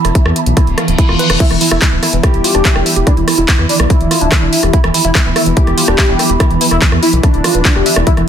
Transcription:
Already playing: synth drone E3, ambient pad B3 E4 E5 A5
0.05 analog synth bass E1, synth arpeggio sound E4, cross-stick, closed hi-hat
0.15 synth arpeggio sound E4, kick, closed hi-hat
0.26 analog synth bass E2, cross-stick
0.36 synth arpeggio sound E4, closed hi-hat
0.46 analog synth bass B1, closed hi-hat
0.57 synth arpeggio sound E4, kick, cross-stick, closed hi-hat, reverse cymbal
0.67 analog synth bass D1, closed hi-hat
0.78 synth arpeggio sound F5, cross-stick, closed hi-hat
0.88 analog synth bass D1, closed hi-hat
0.98 synth arpeggio sound E4, kick, closed hi-hat
1.09 analog synth bass E1, synth arpeggio sound F4, cross-stick
1.19 synth arpeggio sound B4, closed hi-hat
1.30 analog synth bass E1, synth arpeggio sound B4, cross-stick, closed hi-hat
1.40 synth drone E3, synth arpeggio sound E4, analog synth lead E4, kick, closed hi-hat, crash
1.51 analog synth bass E1, analog synth lead E3, synth arpeggio sound E4, cross-stick, closed hi-hat
1.61 analog synth lead E3, synth arpeggio sound E4, open hi-hat
1.71 analog synth bass E1, analog synth lead E4, synth arpeggio sound E4, cross-stick
1.82 analog synth lead E3, synth arpeggio sound E4, kick, clap, closed hi-hat
1.92 analog synth bass D1, analog synth lead E3
2.03 synth arpeggio sound E4, analog synth lead E4, cross-stick, open hi-hat
2.13 analog synth bass E1, analog synth lead E3, ambient pad B5, closed hi-hat
2.23 synth arpeggio sound E4, analog synth lead G4, kick, cross-stick, closed hi-hat
2.34 analog synth bass E1, closed hi-hat
2.44 synth arpeggio sound F4, open hi-hat
2.55 analog synth bass E1, synth arpeggio sound D4, cross-stick, closed hi-hat
2.65 synth arpeggio sound E5, kick, clap, closed hi-hat
2.76 analog synth bass E1, synth arpeggio sound D4, cross-stick
2.86 synth arpeggio sound E5, open hi-hat
2.96 analog synth bass E1, synth arpeggio sound G4, closed hi-hat
3.07 analog synth lead D4, synth arpeggio sound E4, kick, cross-stick, closed hi-hat
3.17 analog synth bass E1, analog synth lead E3, synth arpeggio sound E4, closed hi-hat
3.28 analog synth lead E3, synth arpeggio sound E4, cross-stick, open hi-hat
3.38 analog synth bass E1, synth arpeggio sound E4, analog synth lead E4, closed hi-hat
3.48 analog synth lead E3, kick, clap, closed hi-hat
3.59 analog synth bass E2, analog synth lead E3, cross-stick
3.69 analog synth lead D4, synth arpeggio sound E4, open hi-hat
3.80 analog synth bass B1, analog synth lead E3, cross-stick, closed hi-hat
3.90 synth arpeggio sound E4, analog synth lead E4, kick, closed hi-hat
4.01 analog synth bass D1, closed hi-hat
4.11 synth arpeggio sound F4, cross-stick, open hi-hat
4.21 analog synth bass D1, synth arpeggio sound D4, closed hi-hat
4.32 synth arpeggio sound E5, kick, cross-stick, clap, closed hi-hat
4.42 analog synth bass E1, synth arpeggio sound D4
4.53 synth arpeggio sound E5, open hi-hat
4.63 analog synth bass E1, synth arpeggio sound G4, cross-stick, closed hi-hat
4.73 analog synth lead E4, synth arpeggio sound E4, kick, closed hi-hat
4.84 analog synth bass E1, analog synth lead E3, synth arpeggio sound E4, cross-stick, closed hi-hat
4.94 analog synth lead E3, synth arpeggio sound E4, open hi-hat
5.05 analog synth bass E1, synth arpeggio sound E4, analog synth lead E4, closed hi-hat
5.15 analog synth lead E3, synth arpeggio sound E4, kick, cross-stick, clap, closed hi-hat
5.26 analog synth bass D1, analog synth lead E3
5.36 synth arpeggio sound E4, analog synth lead E4, cross-stick, open hi-hat
5.46 analog synth bass E1, analog synth lead E3, closed hi-hat
5.57 synth arpeggio sound E4, analog synth lead G4, kick, closed hi-hat
5.67 analog synth bass E1, cross-stick, closed hi-hat
5.78 synth arpeggio sound F4, open hi-hat
5.88 analog synth bass E1, synth arpeggio sound D4, cross-stick, closed hi-hat
5.98 synth arpeggio sound E5, kick, clap, closed hi-hat
6.09 analog synth bass E1, synth arpeggio sound D4
6.19 synth arpeggio sound E5, cross-stick, open hi-hat
6.30 analog synth bass E1, synth arpeggio sound G4, closed hi-hat
6.40 synth arpeggio sound E4, analog synth lead E4, kick, cross-stick, closed hi-hat
6.50 analog synth bass E1, analog synth lead E3, synth arpeggio sound E4, closed hi-hat
6.61 analog synth lead E3, synth arpeggio sound E4, open hi-hat
6.71 analog synth bass E1, synth arpeggio sound E4, analog synth lead E4, cross-stick, closed hi-hat
6.82 analog synth lead E3, kick, clap, closed hi-hat
6.92 analog synth bass E2, analog synth lead E3, cross-stick
7.03 analog synth lead E4, synth arpeggio sound E4, open hi-hat
7.13 analog synth bass B1, analog synth lead E3, closed hi-hat
7.23 analog synth lead D4, synth arpeggio sound E4, kick, cross-stick, closed hi-hat
7.34 analog synth bass D1, closed hi-hat
7.44 synth arpeggio sound F4, cross-stick, open hi-hat
7.55 analog synth bass D1, synth arpeggio sound B4, closed hi-hat
7.65 synth arpeggio sound D4, kick, clap, closed hi-hat
7.76 analog synth bass E1, synth arpeggio sound G4, cross-stick
7.86 synth arpeggio sound E5, open hi-hat
7.96 analog synth bass E1, synth arpeggio sound E4, cross-stick
8.07 synth arpeggio sound E4, analog synth lead E4, kick, closed hi-hat
8.17 analog synth bass E1, analog synth lead E3, synth arpeggio sound E4, cross-stick, closed hi-hat

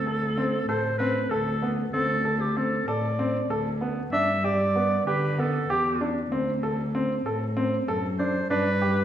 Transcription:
Already playing: cello D2, clarinet A4
0.06 grand piano A4
0.38 grand piano C4
0.68 cello A2, grand piano A4, clarinet C5
0.98 grand piano C4, clarinet B4
1.30 cello D2, clarinet A4, grand piano A4
1.62 grand piano B3
1.93 cello D2, grand piano C4, clarinet A4
2.25 grand piano A4
2.41 clarinet G4
2.57 grand piano C4, clarinet A4
2.87 cello A2, grand piano A4, clarinet D5
3.19 grand piano C4
3.50 cello D2, grand piano A4
3.81 grand piano B3
4.12 cello G2, grand piano D4, clarinet E5
4.44 grand piano G4, clarinet D5
4.76 grand piano B3
5.06 cello D3, grand piano G4, clarinet B4
5.38 grand piano B3, clarinet A4
5.69 cello E2, grand piano G4, clarinet G4
6.01 grand piano D4
6.31 cello D2, grand piano C4
6.63 grand piano A4
6.95 grand piano C4
7.25 cello A2, grand piano A4
7.57 grand piano C4
7.88 cello F#2, grand piano A4
8.19 grand piano D4, clarinet C5
8.50 cello G2, grand piano D4, clarinet B4
8.82 grand piano G4

